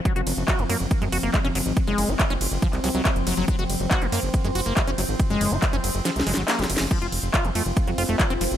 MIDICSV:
0, 0, Header, 1, 6, 480
1, 0, Start_track
1, 0, Tempo, 428571
1, 58, Time_signature, 4, 2, 24, 8
1, 9600, End_track
2, 0, Start_track
2, 0, Title_t, "Ambient pad"
2, 0, Program_c, 0, 92
2, 0, Note_on_c, 0, 53, 77
2, 0, Note_on_c, 0, 60, 75
2, 7725, Note_off_c, 0, 60, 0
2, 7739, Note_on_c, 0, 60, 80
2, 7739, Note_on_c, 0, 65, 80
2, 7787, Note_off_c, 0, 53, 0
2, 9600, Note_off_c, 0, 60, 0
2, 9600, Note_off_c, 0, 65, 0
2, 9600, End_track
3, 0, Start_track
3, 0, Title_t, "Wobble bass"
3, 0, Program_c, 1, 39
3, 8938, Note_on_c, 1, 60, 95
3, 9081, Note_off_c, 1, 60, 0
3, 9600, End_track
4, 0, Start_track
4, 0, Title_t, "Acid bass"
4, 0, Program_c, 2, 38
4, 58, Note_on_c, 2, 54, 90
4, 146, Note_off_c, 2, 54, 0
4, 178, Note_on_c, 2, 66, 75
4, 237, Note_off_c, 2, 66, 0
4, 538, Note_on_c, 2, 66, 88
4, 658, Note_on_c, 2, 56, 83
4, 675, Note_off_c, 2, 66, 0
4, 717, Note_off_c, 2, 56, 0
4, 779, Note_on_c, 2, 58, 77
4, 867, Note_off_c, 2, 58, 0
4, 1138, Note_on_c, 2, 56, 80
4, 1174, Note_off_c, 2, 56, 0
4, 1259, Note_on_c, 2, 66, 77
4, 1317, Note_off_c, 2, 66, 0
4, 1379, Note_on_c, 2, 58, 80
4, 1467, Note_off_c, 2, 58, 0
4, 1499, Note_on_c, 2, 56, 86
4, 1557, Note_off_c, 2, 56, 0
4, 1619, Note_on_c, 2, 61, 102
4, 1654, Note_off_c, 2, 61, 0
4, 1739, Note_on_c, 2, 54, 73
4, 1774, Note_off_c, 2, 54, 0
4, 2099, Note_on_c, 2, 56, 105
4, 2338, Note_on_c, 2, 66, 83
4, 2355, Note_off_c, 2, 56, 0
4, 2397, Note_off_c, 2, 66, 0
4, 2578, Note_on_c, 2, 61, 111
4, 2614, Note_off_c, 2, 61, 0
4, 2938, Note_on_c, 2, 53, 99
4, 2997, Note_off_c, 2, 53, 0
4, 3178, Note_on_c, 2, 54, 81
4, 3237, Note_off_c, 2, 54, 0
4, 3298, Note_on_c, 2, 54, 79
4, 3386, Note_off_c, 2, 54, 0
4, 3418, Note_on_c, 2, 54, 86
4, 3477, Note_off_c, 2, 54, 0
4, 3658, Note_on_c, 2, 54, 79
4, 3747, Note_off_c, 2, 54, 0
4, 3779, Note_on_c, 2, 54, 105
4, 3867, Note_off_c, 2, 54, 0
4, 3898, Note_on_c, 2, 54, 87
4, 3987, Note_off_c, 2, 54, 0
4, 4018, Note_on_c, 2, 66, 78
4, 4077, Note_off_c, 2, 66, 0
4, 4379, Note_on_c, 2, 66, 91
4, 4498, Note_on_c, 2, 56, 83
4, 4515, Note_off_c, 2, 66, 0
4, 4557, Note_off_c, 2, 56, 0
4, 4618, Note_on_c, 2, 58, 79
4, 4707, Note_off_c, 2, 58, 0
4, 4978, Note_on_c, 2, 56, 84
4, 5014, Note_off_c, 2, 56, 0
4, 5099, Note_on_c, 2, 66, 82
4, 5157, Note_off_c, 2, 66, 0
4, 5219, Note_on_c, 2, 58, 77
4, 5307, Note_off_c, 2, 58, 0
4, 5338, Note_on_c, 2, 56, 86
4, 5397, Note_off_c, 2, 56, 0
4, 5459, Note_on_c, 2, 61, 106
4, 5494, Note_off_c, 2, 61, 0
4, 5579, Note_on_c, 2, 54, 75
4, 5614, Note_off_c, 2, 54, 0
4, 5939, Note_on_c, 2, 56, 105
4, 6178, Note_on_c, 2, 66, 83
4, 6195, Note_off_c, 2, 56, 0
4, 6237, Note_off_c, 2, 66, 0
4, 6419, Note_on_c, 2, 61, 110
4, 6454, Note_off_c, 2, 61, 0
4, 6779, Note_on_c, 2, 53, 96
4, 6837, Note_off_c, 2, 53, 0
4, 7019, Note_on_c, 2, 56, 81
4, 7077, Note_off_c, 2, 56, 0
4, 7139, Note_on_c, 2, 54, 101
4, 7197, Note_off_c, 2, 54, 0
4, 7259, Note_on_c, 2, 58, 86
4, 7379, Note_on_c, 2, 54, 105
4, 7395, Note_off_c, 2, 58, 0
4, 7467, Note_off_c, 2, 54, 0
4, 7739, Note_on_c, 2, 53, 86
4, 7827, Note_off_c, 2, 53, 0
4, 7859, Note_on_c, 2, 65, 77
4, 7917, Note_off_c, 2, 65, 0
4, 8219, Note_on_c, 2, 65, 90
4, 8339, Note_on_c, 2, 54, 83
4, 8355, Note_off_c, 2, 65, 0
4, 8397, Note_off_c, 2, 54, 0
4, 8459, Note_on_c, 2, 57, 76
4, 8547, Note_off_c, 2, 57, 0
4, 8818, Note_on_c, 2, 54, 80
4, 8854, Note_off_c, 2, 54, 0
4, 8939, Note_on_c, 2, 65, 78
4, 8997, Note_off_c, 2, 65, 0
4, 9058, Note_on_c, 2, 57, 79
4, 9146, Note_off_c, 2, 57, 0
4, 9178, Note_on_c, 2, 54, 83
4, 9237, Note_off_c, 2, 54, 0
4, 9298, Note_on_c, 2, 60, 100
4, 9334, Note_off_c, 2, 60, 0
4, 9418, Note_on_c, 2, 53, 77
4, 9454, Note_off_c, 2, 53, 0
4, 9600, End_track
5, 0, Start_track
5, 0, Title_t, "Analog synth bass"
5, 0, Program_c, 3, 38
5, 178, Note_on_c, 3, 30, 83
5, 254, Note_off_c, 3, 30, 0
5, 298, Note_on_c, 3, 30, 101
5, 374, Note_off_c, 3, 30, 0
5, 418, Note_on_c, 3, 30, 94
5, 494, Note_off_c, 3, 30, 0
5, 659, Note_on_c, 3, 30, 89
5, 734, Note_off_c, 3, 30, 0
5, 778, Note_on_c, 3, 42, 98
5, 854, Note_off_c, 3, 42, 0
5, 899, Note_on_c, 3, 30, 95
5, 974, Note_off_c, 3, 30, 0
5, 1139, Note_on_c, 3, 42, 86
5, 1214, Note_off_c, 3, 42, 0
5, 1258, Note_on_c, 3, 30, 103
5, 1334, Note_off_c, 3, 30, 0
5, 1378, Note_on_c, 3, 30, 92
5, 1454, Note_off_c, 3, 30, 0
5, 1618, Note_on_c, 3, 30, 85
5, 1694, Note_off_c, 3, 30, 0
5, 1739, Note_on_c, 3, 30, 98
5, 1814, Note_off_c, 3, 30, 0
5, 1858, Note_on_c, 3, 32, 88
5, 1934, Note_off_c, 3, 32, 0
5, 2099, Note_on_c, 3, 30, 86
5, 2174, Note_off_c, 3, 30, 0
5, 2219, Note_on_c, 3, 30, 98
5, 2294, Note_off_c, 3, 30, 0
5, 2339, Note_on_c, 3, 30, 99
5, 2414, Note_off_c, 3, 30, 0
5, 2579, Note_on_c, 3, 30, 89
5, 2654, Note_off_c, 3, 30, 0
5, 2699, Note_on_c, 3, 30, 100
5, 2774, Note_off_c, 3, 30, 0
5, 2819, Note_on_c, 3, 30, 95
5, 2894, Note_off_c, 3, 30, 0
5, 3059, Note_on_c, 3, 36, 84
5, 3134, Note_off_c, 3, 36, 0
5, 3179, Note_on_c, 3, 36, 103
5, 3254, Note_off_c, 3, 36, 0
5, 3299, Note_on_c, 3, 36, 90
5, 3374, Note_off_c, 3, 36, 0
5, 3539, Note_on_c, 3, 30, 88
5, 3614, Note_off_c, 3, 30, 0
5, 3659, Note_on_c, 3, 30, 101
5, 3734, Note_off_c, 3, 30, 0
5, 3779, Note_on_c, 3, 30, 91
5, 3854, Note_off_c, 3, 30, 0
5, 4019, Note_on_c, 3, 30, 91
5, 4094, Note_off_c, 3, 30, 0
5, 4139, Note_on_c, 3, 30, 99
5, 4214, Note_off_c, 3, 30, 0
5, 4259, Note_on_c, 3, 30, 96
5, 4334, Note_off_c, 3, 30, 0
5, 4498, Note_on_c, 3, 30, 84
5, 4574, Note_off_c, 3, 30, 0
5, 4619, Note_on_c, 3, 42, 100
5, 4694, Note_off_c, 3, 42, 0
5, 4739, Note_on_c, 3, 30, 102
5, 4814, Note_off_c, 3, 30, 0
5, 4979, Note_on_c, 3, 42, 86
5, 5054, Note_off_c, 3, 42, 0
5, 5099, Note_on_c, 3, 30, 107
5, 5174, Note_off_c, 3, 30, 0
5, 5219, Note_on_c, 3, 30, 90
5, 5294, Note_off_c, 3, 30, 0
5, 5459, Note_on_c, 3, 30, 89
5, 5534, Note_off_c, 3, 30, 0
5, 5579, Note_on_c, 3, 30, 102
5, 5654, Note_off_c, 3, 30, 0
5, 5699, Note_on_c, 3, 32, 90
5, 5774, Note_off_c, 3, 32, 0
5, 5939, Note_on_c, 3, 30, 88
5, 6014, Note_off_c, 3, 30, 0
5, 6059, Note_on_c, 3, 30, 97
5, 6134, Note_off_c, 3, 30, 0
5, 6179, Note_on_c, 3, 30, 93
5, 6254, Note_off_c, 3, 30, 0
5, 6419, Note_on_c, 3, 30, 88
5, 6494, Note_off_c, 3, 30, 0
5, 6539, Note_on_c, 3, 30, 100
5, 6614, Note_off_c, 3, 30, 0
5, 6659, Note_on_c, 3, 30, 96
5, 6734, Note_off_c, 3, 30, 0
5, 6899, Note_on_c, 3, 36, 85
5, 6974, Note_off_c, 3, 36, 0
5, 7019, Note_on_c, 3, 30, 100
5, 7094, Note_off_c, 3, 30, 0
5, 7139, Note_on_c, 3, 32, 87
5, 7214, Note_off_c, 3, 32, 0
5, 7379, Note_on_c, 3, 30, 84
5, 7454, Note_off_c, 3, 30, 0
5, 7499, Note_on_c, 3, 30, 98
5, 7574, Note_off_c, 3, 30, 0
5, 7619, Note_on_c, 3, 30, 88
5, 7694, Note_off_c, 3, 30, 0
5, 7859, Note_on_c, 3, 29, 85
5, 7934, Note_off_c, 3, 29, 0
5, 7979, Note_on_c, 3, 29, 100
5, 8054, Note_off_c, 3, 29, 0
5, 8099, Note_on_c, 3, 29, 96
5, 8174, Note_off_c, 3, 29, 0
5, 8338, Note_on_c, 3, 29, 87
5, 8414, Note_off_c, 3, 29, 0
5, 8459, Note_on_c, 3, 41, 95
5, 8534, Note_off_c, 3, 41, 0
5, 8579, Note_on_c, 3, 29, 98
5, 8654, Note_off_c, 3, 29, 0
5, 8818, Note_on_c, 3, 41, 84
5, 8894, Note_off_c, 3, 41, 0
5, 8938, Note_on_c, 3, 29, 107
5, 9014, Note_off_c, 3, 29, 0
5, 9059, Note_on_c, 3, 29, 93
5, 9134, Note_off_c, 3, 29, 0
5, 9298, Note_on_c, 3, 29, 85
5, 9374, Note_off_c, 3, 29, 0
5, 9419, Note_on_c, 3, 29, 104
5, 9494, Note_off_c, 3, 29, 0
5, 9538, Note_on_c, 3, 30, 90
5, 9600, Note_off_c, 3, 30, 0
5, 9600, End_track
6, 0, Start_track
6, 0, Title_t, "Drums"
6, 58, Note_on_c, 9, 36, 122
6, 59, Note_on_c, 9, 42, 87
6, 170, Note_off_c, 9, 36, 0
6, 171, Note_off_c, 9, 42, 0
6, 179, Note_on_c, 9, 42, 40
6, 291, Note_off_c, 9, 42, 0
6, 298, Note_on_c, 9, 46, 109
6, 298, Note_on_c, 9, 51, 84
6, 410, Note_off_c, 9, 46, 0
6, 410, Note_off_c, 9, 51, 0
6, 419, Note_on_c, 9, 42, 37
6, 531, Note_off_c, 9, 42, 0
6, 538, Note_on_c, 9, 36, 123
6, 539, Note_on_c, 9, 39, 112
6, 539, Note_on_c, 9, 42, 88
6, 650, Note_off_c, 9, 36, 0
6, 651, Note_off_c, 9, 39, 0
6, 651, Note_off_c, 9, 42, 0
6, 659, Note_on_c, 9, 42, 39
6, 771, Note_off_c, 9, 42, 0
6, 779, Note_on_c, 9, 46, 109
6, 779, Note_on_c, 9, 51, 81
6, 891, Note_off_c, 9, 46, 0
6, 891, Note_off_c, 9, 51, 0
6, 899, Note_on_c, 9, 42, 39
6, 1011, Note_off_c, 9, 42, 0
6, 1019, Note_on_c, 9, 36, 125
6, 1019, Note_on_c, 9, 42, 85
6, 1131, Note_off_c, 9, 36, 0
6, 1131, Note_off_c, 9, 42, 0
6, 1139, Note_on_c, 9, 42, 39
6, 1251, Note_off_c, 9, 42, 0
6, 1259, Note_on_c, 9, 46, 103
6, 1259, Note_on_c, 9, 51, 76
6, 1371, Note_off_c, 9, 46, 0
6, 1371, Note_off_c, 9, 51, 0
6, 1379, Note_on_c, 9, 42, 38
6, 1491, Note_off_c, 9, 42, 0
6, 1498, Note_on_c, 9, 36, 121
6, 1499, Note_on_c, 9, 39, 114
6, 1499, Note_on_c, 9, 42, 89
6, 1610, Note_off_c, 9, 36, 0
6, 1611, Note_off_c, 9, 39, 0
6, 1611, Note_off_c, 9, 42, 0
6, 1619, Note_on_c, 9, 42, 39
6, 1731, Note_off_c, 9, 42, 0
6, 1739, Note_on_c, 9, 46, 109
6, 1739, Note_on_c, 9, 51, 80
6, 1851, Note_off_c, 9, 46, 0
6, 1851, Note_off_c, 9, 51, 0
6, 1859, Note_on_c, 9, 42, 38
6, 1971, Note_off_c, 9, 42, 0
6, 1979, Note_on_c, 9, 36, 118
6, 1979, Note_on_c, 9, 42, 91
6, 2091, Note_off_c, 9, 36, 0
6, 2091, Note_off_c, 9, 42, 0
6, 2099, Note_on_c, 9, 42, 39
6, 2211, Note_off_c, 9, 42, 0
6, 2219, Note_on_c, 9, 46, 105
6, 2219, Note_on_c, 9, 51, 79
6, 2331, Note_off_c, 9, 46, 0
6, 2331, Note_off_c, 9, 51, 0
6, 2339, Note_on_c, 9, 42, 38
6, 2451, Note_off_c, 9, 42, 0
6, 2459, Note_on_c, 9, 36, 116
6, 2459, Note_on_c, 9, 39, 112
6, 2459, Note_on_c, 9, 42, 89
6, 2571, Note_off_c, 9, 36, 0
6, 2571, Note_off_c, 9, 39, 0
6, 2571, Note_off_c, 9, 42, 0
6, 2579, Note_on_c, 9, 42, 41
6, 2691, Note_off_c, 9, 42, 0
6, 2699, Note_on_c, 9, 46, 108
6, 2699, Note_on_c, 9, 51, 87
6, 2811, Note_off_c, 9, 46, 0
6, 2811, Note_off_c, 9, 51, 0
6, 2819, Note_on_c, 9, 42, 42
6, 2931, Note_off_c, 9, 42, 0
6, 2939, Note_on_c, 9, 36, 118
6, 2939, Note_on_c, 9, 42, 92
6, 3051, Note_off_c, 9, 36, 0
6, 3051, Note_off_c, 9, 42, 0
6, 3059, Note_on_c, 9, 39, 37
6, 3059, Note_on_c, 9, 42, 42
6, 3171, Note_off_c, 9, 39, 0
6, 3171, Note_off_c, 9, 42, 0
6, 3179, Note_on_c, 9, 46, 98
6, 3179, Note_on_c, 9, 51, 82
6, 3291, Note_off_c, 9, 46, 0
6, 3291, Note_off_c, 9, 51, 0
6, 3299, Note_on_c, 9, 42, 40
6, 3411, Note_off_c, 9, 42, 0
6, 3419, Note_on_c, 9, 36, 115
6, 3419, Note_on_c, 9, 39, 110
6, 3419, Note_on_c, 9, 42, 93
6, 3531, Note_off_c, 9, 36, 0
6, 3531, Note_off_c, 9, 39, 0
6, 3531, Note_off_c, 9, 42, 0
6, 3539, Note_on_c, 9, 42, 40
6, 3651, Note_off_c, 9, 42, 0
6, 3659, Note_on_c, 9, 46, 109
6, 3659, Note_on_c, 9, 51, 89
6, 3771, Note_off_c, 9, 46, 0
6, 3771, Note_off_c, 9, 51, 0
6, 3779, Note_on_c, 9, 42, 38
6, 3891, Note_off_c, 9, 42, 0
6, 3898, Note_on_c, 9, 36, 118
6, 3899, Note_on_c, 9, 42, 97
6, 4011, Note_off_c, 9, 36, 0
6, 4011, Note_off_c, 9, 42, 0
6, 4019, Note_on_c, 9, 42, 41
6, 4131, Note_off_c, 9, 42, 0
6, 4139, Note_on_c, 9, 46, 97
6, 4139, Note_on_c, 9, 51, 85
6, 4251, Note_off_c, 9, 46, 0
6, 4251, Note_off_c, 9, 51, 0
6, 4259, Note_on_c, 9, 42, 41
6, 4371, Note_off_c, 9, 42, 0
6, 4378, Note_on_c, 9, 39, 117
6, 4378, Note_on_c, 9, 42, 95
6, 4379, Note_on_c, 9, 36, 117
6, 4490, Note_off_c, 9, 39, 0
6, 4490, Note_off_c, 9, 42, 0
6, 4491, Note_off_c, 9, 36, 0
6, 4499, Note_on_c, 9, 42, 42
6, 4611, Note_off_c, 9, 42, 0
6, 4619, Note_on_c, 9, 46, 102
6, 4619, Note_on_c, 9, 51, 86
6, 4731, Note_off_c, 9, 46, 0
6, 4731, Note_off_c, 9, 51, 0
6, 4739, Note_on_c, 9, 42, 43
6, 4851, Note_off_c, 9, 42, 0
6, 4858, Note_on_c, 9, 42, 97
6, 4859, Note_on_c, 9, 36, 113
6, 4970, Note_off_c, 9, 42, 0
6, 4971, Note_off_c, 9, 36, 0
6, 4979, Note_on_c, 9, 42, 43
6, 5091, Note_off_c, 9, 42, 0
6, 5098, Note_on_c, 9, 46, 98
6, 5098, Note_on_c, 9, 51, 82
6, 5210, Note_off_c, 9, 46, 0
6, 5210, Note_off_c, 9, 51, 0
6, 5219, Note_on_c, 9, 42, 40
6, 5331, Note_off_c, 9, 42, 0
6, 5339, Note_on_c, 9, 36, 112
6, 5339, Note_on_c, 9, 39, 112
6, 5339, Note_on_c, 9, 42, 95
6, 5451, Note_off_c, 9, 36, 0
6, 5451, Note_off_c, 9, 39, 0
6, 5451, Note_off_c, 9, 42, 0
6, 5459, Note_on_c, 9, 42, 42
6, 5571, Note_off_c, 9, 42, 0
6, 5579, Note_on_c, 9, 46, 110
6, 5579, Note_on_c, 9, 51, 88
6, 5691, Note_off_c, 9, 46, 0
6, 5691, Note_off_c, 9, 51, 0
6, 5699, Note_on_c, 9, 42, 40
6, 5811, Note_off_c, 9, 42, 0
6, 5819, Note_on_c, 9, 36, 117
6, 5819, Note_on_c, 9, 42, 94
6, 5931, Note_off_c, 9, 36, 0
6, 5931, Note_off_c, 9, 42, 0
6, 5939, Note_on_c, 9, 42, 43
6, 6051, Note_off_c, 9, 42, 0
6, 6059, Note_on_c, 9, 46, 104
6, 6059, Note_on_c, 9, 51, 83
6, 6171, Note_off_c, 9, 46, 0
6, 6171, Note_off_c, 9, 51, 0
6, 6179, Note_on_c, 9, 42, 44
6, 6291, Note_off_c, 9, 42, 0
6, 6299, Note_on_c, 9, 36, 116
6, 6299, Note_on_c, 9, 39, 119
6, 6299, Note_on_c, 9, 42, 94
6, 6411, Note_off_c, 9, 36, 0
6, 6411, Note_off_c, 9, 39, 0
6, 6411, Note_off_c, 9, 42, 0
6, 6419, Note_on_c, 9, 42, 43
6, 6531, Note_off_c, 9, 42, 0
6, 6539, Note_on_c, 9, 46, 109
6, 6539, Note_on_c, 9, 51, 84
6, 6651, Note_off_c, 9, 46, 0
6, 6651, Note_off_c, 9, 51, 0
6, 6659, Note_on_c, 9, 42, 45
6, 6771, Note_off_c, 9, 42, 0
6, 6779, Note_on_c, 9, 38, 67
6, 6779, Note_on_c, 9, 42, 95
6, 6891, Note_off_c, 9, 38, 0
6, 6891, Note_off_c, 9, 42, 0
6, 6899, Note_on_c, 9, 42, 42
6, 6939, Note_on_c, 9, 38, 79
6, 7011, Note_off_c, 9, 42, 0
6, 7019, Note_on_c, 9, 46, 101
6, 7019, Note_on_c, 9, 51, 80
6, 7051, Note_off_c, 9, 38, 0
6, 7099, Note_on_c, 9, 38, 82
6, 7131, Note_off_c, 9, 46, 0
6, 7131, Note_off_c, 9, 51, 0
6, 7211, Note_off_c, 9, 38, 0
6, 7259, Note_on_c, 9, 38, 89
6, 7259, Note_on_c, 9, 39, 124
6, 7259, Note_on_c, 9, 42, 95
6, 7371, Note_off_c, 9, 38, 0
6, 7371, Note_off_c, 9, 39, 0
6, 7371, Note_off_c, 9, 42, 0
6, 7379, Note_on_c, 9, 42, 43
6, 7419, Note_on_c, 9, 38, 96
6, 7491, Note_off_c, 9, 42, 0
6, 7499, Note_on_c, 9, 46, 112
6, 7499, Note_on_c, 9, 51, 90
6, 7531, Note_off_c, 9, 38, 0
6, 7579, Note_on_c, 9, 38, 108
6, 7611, Note_off_c, 9, 46, 0
6, 7611, Note_off_c, 9, 51, 0
6, 7619, Note_on_c, 9, 46, 58
6, 7691, Note_off_c, 9, 38, 0
6, 7731, Note_off_c, 9, 46, 0
6, 7739, Note_on_c, 9, 36, 127
6, 7739, Note_on_c, 9, 42, 94
6, 7739, Note_on_c, 9, 49, 74
6, 7851, Note_off_c, 9, 36, 0
6, 7851, Note_off_c, 9, 42, 0
6, 7851, Note_off_c, 9, 49, 0
6, 7859, Note_on_c, 9, 42, 43
6, 7971, Note_off_c, 9, 42, 0
6, 7979, Note_on_c, 9, 46, 104
6, 7979, Note_on_c, 9, 51, 79
6, 8091, Note_off_c, 9, 46, 0
6, 8091, Note_off_c, 9, 51, 0
6, 8099, Note_on_c, 9, 42, 44
6, 8211, Note_off_c, 9, 42, 0
6, 8219, Note_on_c, 9, 36, 119
6, 8219, Note_on_c, 9, 39, 124
6, 8219, Note_on_c, 9, 42, 91
6, 8331, Note_off_c, 9, 36, 0
6, 8331, Note_off_c, 9, 39, 0
6, 8331, Note_off_c, 9, 42, 0
6, 8339, Note_on_c, 9, 42, 43
6, 8451, Note_off_c, 9, 42, 0
6, 8459, Note_on_c, 9, 46, 105
6, 8459, Note_on_c, 9, 51, 81
6, 8571, Note_off_c, 9, 46, 0
6, 8571, Note_off_c, 9, 51, 0
6, 8579, Note_on_c, 9, 42, 45
6, 8691, Note_off_c, 9, 42, 0
6, 8698, Note_on_c, 9, 36, 123
6, 8698, Note_on_c, 9, 42, 100
6, 8810, Note_off_c, 9, 36, 0
6, 8810, Note_off_c, 9, 42, 0
6, 8819, Note_on_c, 9, 42, 45
6, 8931, Note_off_c, 9, 42, 0
6, 8939, Note_on_c, 9, 46, 104
6, 8939, Note_on_c, 9, 51, 76
6, 9051, Note_off_c, 9, 46, 0
6, 9051, Note_off_c, 9, 51, 0
6, 9059, Note_on_c, 9, 42, 41
6, 9171, Note_off_c, 9, 42, 0
6, 9179, Note_on_c, 9, 36, 121
6, 9179, Note_on_c, 9, 39, 127
6, 9179, Note_on_c, 9, 42, 94
6, 9291, Note_off_c, 9, 36, 0
6, 9291, Note_off_c, 9, 39, 0
6, 9291, Note_off_c, 9, 42, 0
6, 9299, Note_on_c, 9, 42, 42
6, 9411, Note_off_c, 9, 42, 0
6, 9419, Note_on_c, 9, 46, 111
6, 9419, Note_on_c, 9, 51, 81
6, 9531, Note_off_c, 9, 46, 0
6, 9531, Note_off_c, 9, 51, 0
6, 9539, Note_on_c, 9, 42, 42
6, 9600, Note_off_c, 9, 42, 0
6, 9600, End_track
0, 0, End_of_file